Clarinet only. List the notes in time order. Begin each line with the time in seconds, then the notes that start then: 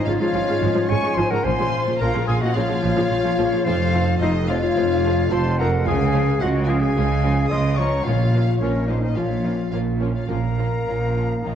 0.09 F4
0.22 F4
0.90 C#5
1.17 C5
1.30 A#4
1.44 C5
2.01 A#4
2.28 G#4
2.41 F#4
2.56 F4
3.67 F4
4.22 D#4
4.49 F4
4.63 F4
5.32 C5
5.60 A#4
5.87 G#4
6.42 F#4
6.69 G#4
6.82 G#4
7.52 D#5
7.78 C#5
8.04 F4
8.60 C#4
8.87 D#4
9.01 D#4
9.16 F4
9.73 F4
10.01 C#4
10.15 F4
10.28 A#4